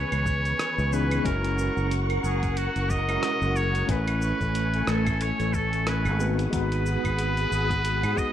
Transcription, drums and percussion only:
0.12 closed hi-hat soft
0.12 claves medium
0.12 shaker soft
0.26 kick loud
0.26 shaker medium
0.45 closed hi-hat soft
0.45 shaker soft
0.59 cross-stick medium
0.59 closed hi-hat medium
0.59 shaker soft
0.79 shaker soft
0.93 shaker medium
1.11 closed hi-hat soft
1.11 claves medium
1.11 shaker soft
1.25 kick loud
1.25 closed hi-hat medium
1.25 shaker soft
1.44 closed hi-hat soft
1.59 shaker medium
1.77 shaker soft
1.91 closed hi-hat medium
1.91 shaker soft
2.10 closed hi-hat soft
2.10 claves medium
2.24 shaker medium
2.43 kick loud
2.43 closed hi-hat soft
2.43 shaker soft
2.57 closed hi-hat medium
2.57 shaker soft
2.76 closed hi-hat soft
2.76 shaker soft
2.90 kick medium
2.90 shaker medium
3.09 closed hi-hat soft
3.09 claves medium
3.09 shaker soft
3.23 cross-stick medium
3.23 closed hi-hat medium
3.23 shaker soft
3.42 shaker soft
3.56 shaker medium
3.75 closed hi-hat soft
3.75 shaker soft
3.89 kick loud
3.89 closed hi-hat medium
3.89 shaker soft
4.08 closed hi-hat soft
4.08 claves medium
4.22 shaker medium
4.41 kick medium
4.41 shaker soft
4.55 closed hi-hat medium
4.55 shaker soft
4.74 closed hi-hat soft
4.87 cross-stick medium
4.87 shaker medium
5.07 kick loud
5.07 closed hi-hat soft
5.07 claves medium
5.07 shaker soft
5.21 closed hi-hat medium
5.21 shaker soft
5.40 closed hi-hat soft
5.40 shaker soft
5.54 kick loud
5.54 shaker medium
5.73 closed hi-hat soft
5.73 shaker soft
5.87 cross-stick medium
5.87 closed hi-hat medium
5.87 shaker soft
6.05 claves medium
6.05 shaker soft
6.20 shaker medium
6.39 closed hi-hat soft
6.39 shaker soft
6.53 kick loud
6.53 closed hi-hat medium
6.53 shaker soft
6.72 closed hi-hat soft
6.72 shaker soft
6.86 shaker medium
7.05 kick medium
7.05 closed hi-hat soft
7.05 claves medium
7.05 shaker soft
7.19 closed hi-hat medium
7.19 shaker soft
7.37 closed hi-hat soft
7.37 shaker soft
7.52 shaker medium
7.70 kick loud
7.70 closed hi-hat soft
7.70 shaker soft
7.85 closed hi-hat medium
7.85 shaker soft
8.03 closed hi-hat soft
8.03 claves medium
8.03 shaker soft
8.17 kick loud
8.17 shaker medium

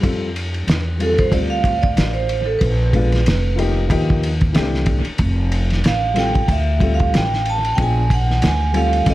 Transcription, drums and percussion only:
0.03 kick loud
0.03 ride medium
0.36 ride medium
0.54 ride soft
0.68 snare loud
0.68 hi-hat pedal medium
0.68 ride medium
1.00 ride medium
1.18 kick medium
1.18 ride soft
1.32 kick medium
1.32 ride medium
1.64 kick medium
1.64 ride medium
1.83 kick medium
1.83 ride soft
1.97 snare loud
1.97 hi-hat pedal soft
1.97 ride medium
2.29 ride medium
2.61 kick loud
2.61 ride medium
2.93 kick medium
2.93 ride medium
3.12 snare soft
3.12 ride soft
3.26 snare loud
3.26 hi-hat pedal medium
3.26 ride medium
3.59 ride medium
3.90 kick loud
3.90 ride medium
4.10 kick medium
4.23 ride medium
4.41 kick medium
4.41 ride soft
4.55 snare loud
4.55 hi-hat pedal soft
4.55 ride medium
4.74 snare soft
4.86 kick loud
4.86 ride medium
5.05 ride soft
5.18 kick loud
5.18 ride medium
5.52 ride medium
5.70 snare soft
5.70 ride soft
5.84 snare loud
5.84 hi-hat pedal medium
5.84 ride medium
6.16 snare soft
6.16 ride medium
6.35 kick loud
6.35 ride soft
6.48 kick medium
6.48 ride medium
6.80 kick medium
6.80 ride medium
7.00 kick medium
7.00 ride soft
7.14 snare loud
7.14 hi-hat pedal soft
7.14 ride medium
7.34 snare soft
7.45 ride medium
7.65 ride soft
7.78 kick loud
7.78 ride medium
8.10 kick medium
8.10 ride medium
8.31 snare soft
8.42 snare loud
8.42 hi-hat pedal soft
8.42 ride medium
8.74 ride medium
8.93 ride medium
9.06 kick medium
9.06 ride medium

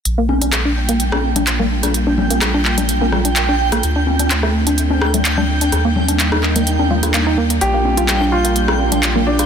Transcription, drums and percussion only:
0.05 closed hi-hat soft
0.29 high conga medium
0.42 closed hi-hat medium
0.42 high conga medium
0.53 cross-stick soft
0.53 clap loud
0.53 closed hi-hat soft
0.89 closed hi-hat medium
1.00 closed hi-hat soft
1.12 cross-stick medium
1.12 high conga medium
1.36 closed hi-hat medium
1.36 low conga medium
1.47 clap loud
1.47 closed hi-hat soft
1.60 low conga medium
1.83 cross-stick soft
1.83 closed hi-hat medium
1.94 closed hi-hat soft
2.18 high conga medium
2.18 low conga medium
2.30 closed hi-hat medium
2.30 high conga medium
2.42 cross-stick medium
2.42 clap loud
2.42 closed hi-hat soft
2.65 clap medium
2.78 closed hi-hat medium
2.78 low conga medium
2.89 closed hi-hat soft
3.01 high conga medium
3.12 cross-stick soft
3.12 low conga medium
3.25 closed hi-hat medium
3.36 clap loud
3.36 closed hi-hat soft
3.72 cross-stick medium
3.72 closed hi-hat medium
3.83 closed hi-hat soft
4.07 high conga medium
4.19 closed hi-hat medium
4.19 high conga medium
4.30 clap loud
4.30 closed hi-hat soft
4.43 cross-stick soft
4.67 closed hi-hat medium
4.78 closed hi-hat soft
4.90 high conga medium
5.02 cross-stick medium
5.14 closed hi-hat medium
5.14 low conga medium
5.25 clap loud
5.25 closed hi-hat soft
5.38 low conga medium
5.61 closed hi-hat medium
5.72 cross-stick soft
5.72 closed hi-hat soft
5.96 high conga medium
5.96 low conga medium
6.08 closed hi-hat medium
6.08 high conga medium
6.20 clap loud
6.20 closed hi-hat soft
6.32 cross-stick medium
6.43 clap medium
6.56 closed hi-hat medium
6.56 low conga medium
6.67 closed hi-hat soft
6.79 high conga medium
6.90 low conga medium
7.03 cross-stick soft
7.03 closed hi-hat medium
7.14 clap loud
7.14 closed hi-hat soft
7.50 closed hi-hat medium
7.61 closed hi-hat soft
7.85 high conga medium
7.97 closed hi-hat medium
7.97 high conga medium
8.08 cross-stick soft
8.08 clap loud
8.08 closed hi-hat soft
8.45 closed hi-hat medium
8.56 closed hi-hat soft
8.68 cross-stick medium
8.68 high conga medium
8.92 closed hi-hat medium
8.92 low conga medium
9.03 clap loud
9.03 closed hi-hat soft
9.15 low conga medium
9.39 cross-stick soft
9.39 closed hi-hat medium

